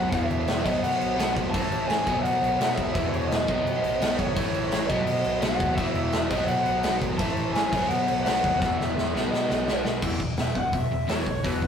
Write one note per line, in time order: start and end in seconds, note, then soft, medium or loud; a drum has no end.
0.00 0.10 B1 loud
0.00 0.11 B2 medium
0.00 0.12 F#3 medium
0.00 0.12 B3 medium
0.00 0.10 F#5 loud
0.11 0.28 E1 loud
0.11 0.64 E2 loud
0.11 0.63 B2 loud
0.11 0.65 E3 loud
0.11 0.65 E5 loud
0.11 kick loud
0.11 crash medium
0.31 0.46 E1 medium
0.31 crash medium
0.48 0.64 E1 loud
0.48 snare loud
0.48 crash medium
0.64 0.81 B1 medium
0.64 1.16 B2 loud
0.64 1.17 F#3 loud
0.64 1.18 B3 loud
0.64 0.82 D#5 loud
0.64 kick loud
0.64 crash loud
0.83 0.99 B2 loud
0.83 1.32 F#5 loud
0.83 crash medium
1.01 1.17 B1 medium
1.01 crash medium
1.17 1.34 B1 loud
1.17 1.52 B2 medium
1.17 1.53 F#3 medium
1.17 1.54 B3 medium
1.17 snare loud
1.17 crash loud
1.36 1.52 B1 medium
1.36 kick medium
1.36 crash medium
1.50 2.05 A2 loud
1.50 2.06 E3 loud
1.50 1.88 A5 loud
1.50 kick loud
1.55 1.70 A1 loud
1.55 2.07 A3 loud
1.55 crash loud
1.72 1.88 A1 medium
1.72 crash medium
1.88 2.05 A1 medium
1.88 2.18 G#5 loud
1.88 snare loud
1.88 crash medium
2.06 2.22 B1 medium
2.06 2.58 B2 loud
2.06 2.59 F#3 loud
2.06 2.60 B3 loud
2.06 kick loud
2.06 crash medium
2.19 2.23 E5 medium
2.19 2.74 F#5 loud
2.23 2.39 B2 loud
2.23 crash medium
2.42 2.58 B1 medium
2.42 crash medium
2.59 2.75 B1 medium
2.59 2.94 B2 medium
2.59 2.95 F#3 medium
2.59 2.95 B3 medium
2.59 snare loud
2.59 crash medium
2.75 2.93 B1 loud
2.75 3.13 E5 loud
2.75 kick loud
2.75 crash medium
2.94 3.11 E1 loud
2.94 3.46 E2 loud
2.94 3.46 B2 medium
2.94 3.48 E3 loud
2.94 kick loud
2.94 crash medium
3.09 3.27 E1 medium
3.09 3.29 C#5 loud
3.14 crash medium
3.27 3.45 E1 medium
3.27 4.20 D#5 loud
3.31 snare loud
3.31 crash medium
3.47 3.64 B1 medium
3.47 3.99 B2 loud
3.47 4.00 F#3 loud
3.47 4.01 B3 loud
3.47 kick loud
3.47 crash medium
3.65 3.81 B2 medium
3.65 crash medium
3.83 3.99 B1 medium
3.83 crash medium
4.00 4.17 B1 medium
4.00 4.35 B2 medium
4.00 4.36 F#3 medium
4.00 4.36 B3 medium
4.00 snare loud
4.00 crash loud
4.17 4.35 G#1 medium
4.17 4.85 C#5 medium
4.17 kick medium
4.17 crash medium
4.35 4.52 A1 medium
4.35 4.88 A2 medium
4.35 4.89 E3 loud
4.35 4.90 A3 loud
4.35 kick loud
4.35 crash loud
4.54 4.70 A1 medium
4.54 crash medium
4.72 4.88 A1 loud
4.72 snare loud
4.72 crash medium
4.87 5.05 B1 medium
4.87 5.41 B2 loud
4.87 5.42 F#3 loud
4.87 5.04 D#5 loud
4.87 kick loud
4.87 crash medium
4.92 5.43 B3 loud
5.05 5.23 B2 loud
5.05 5.41 D#5 loud
5.05 crash medium
5.24 5.41 B1 medium
5.24 crash medium
5.41 5.58 B1 medium
5.41 5.77 B2 medium
5.41 5.78 F#3 medium
5.41 5.76 F#5 loud
5.41 snare loud
5.41 crash medium
5.46 5.79 B3 medium
5.60 5.76 D#2 medium
5.60 kick loud
5.60 crash medium
5.76 5.94 E1 loud
5.76 6.30 E2 medium
5.76 6.30 B2 medium
5.76 6.31 E5 loud
5.76 kick loud
5.76 crash medium
5.81 6.32 E3 loud
5.95 6.11 E1 medium
5.95 crash medium
6.12 6.29 E1 loud
6.12 snare loud
6.12 crash medium
6.30 6.46 B1 medium
6.30 6.83 B2 medium
6.30 6.84 F#3 loud
6.30 6.85 B3 loud
6.30 6.48 D#5 loud
6.30 kick loud
6.30 crash loud
6.48 6.64 B2 loud
6.48 6.98 F#5 loud
6.48 crash medium
6.66 6.82 B1 medium
6.66 crash medium
6.83 7.00 B1 loud
6.83 7.18 B2 medium
6.83 7.19 F#3 medium
6.83 7.20 B3 medium
6.83 snare loud
6.83 crash medium
7.01 7.17 G#1 medium
7.01 kick loud
7.01 crash medium
7.18 7.35 A1 loud
7.18 7.71 A2 medium
7.18 7.72 E3 loud
7.18 7.53 A5 loud
7.18 kick loud
7.18 crash loud
7.22 7.73 A3 loud
7.37 7.52 A1 medium
7.37 crash medium
7.53 7.70 A1 medium
7.53 7.90 G#5 loud
7.53 snare loud
7.53 crash medium
7.73 7.88 B1 medium
7.73 8.24 B2 loud
7.73 8.25 F#3 loud
7.73 8.28 B3 loud
7.73 kick loud
7.73 crash loud
7.89 8.07 B2 loud
7.89 8.23 F#5 loud
7.89 crash medium
8.08 8.25 B1 medium
8.08 crash medium
8.24 8.42 B1 medium
8.24 8.60 B2 medium
8.24 8.61 F#3 medium
8.24 8.59 F#5 loud
8.24 snare loud
8.24 crash loud
8.28 9.17 B3 medium
8.44 8.59 D#2 loud
8.44 kick loud
8.44 crash medium
8.60 8.77 E1 loud
8.60 9.13 E2 medium
8.60 9.13 B2 loud
8.60 9.14 E3 loud
8.60 8.78 F#5 loud
8.60 kick loud
8.60 snare medium
8.78 8.95 E1 medium
8.78 9.14 E5 loud
8.78 snare medium
8.98 9.12 E1 loud
8.98 snare medium
9.14 9.30 B1 loud
9.14 9.65 B2 loud
9.14 9.67 F#3 loud
9.14 9.68 B3 loud
9.14 snare medium
9.31 9.47 B2 loud
9.31 9.81 D#5 medium
9.31 snare medium
9.50 9.65 B1 medium
9.50 snare loud
9.66 9.83 B1 medium
9.66 10.01 B2 medium
9.66 10.02 F#3 medium
9.66 10.03 B3 medium
9.66 snare loud
9.85 10.01 B1 medium
9.85 snare loud
10.02 10.36 E1 medium
10.02 10.18 E2 medium
10.02 10.18 B2 medium
10.02 10.20 E3 loud
10.02 kick loud
10.02 crash loud
10.19 10.36 E2 medium
10.19 10.36 B2 medium
10.19 kick medium
10.37 10.72 E1 medium
10.37 10.54 E2 medium
10.37 10.54 B2 medium
10.37 snare medium
10.37 open hi-hat medium
10.41 10.58 E5 loud
10.55 10.72 E2 medium
10.55 10.72 B2 medium
10.55 10.74 F#5 loud
10.55 kick medium
10.73 10.90 E1 medium
10.73 10.90 E2 medium
10.73 10.90 B2 medium
10.73 11.11 E5 loud
10.73 kick loud
10.73 open hi-hat medium
10.91 11.09 E1 medium
10.91 11.06 E2 medium
10.91 11.07 B2 medium
11.07 11.26 E1 medium
11.07 11.25 E2 medium
11.07 11.25 B2 medium
11.07 11.25 E3 medium
11.07 11.46 C#5 medium
11.07 snare loud
11.07 open hi-hat medium
11.26 11.43 B1 medium
11.26 11.43 E2 medium
11.26 11.43 B2 medium
11.26 kick medium
11.44 11.67 E1 loud
11.44 11.61 E2 medium
11.44 11.61 B2 loud
11.44 11.61 E3 loud
11.44 11.67 B4 medium
11.44 kick loud
11.44 open hi-hat medium
11.62 11.67 E2 medium
11.62 11.67 B2 medium
11.62 kick medium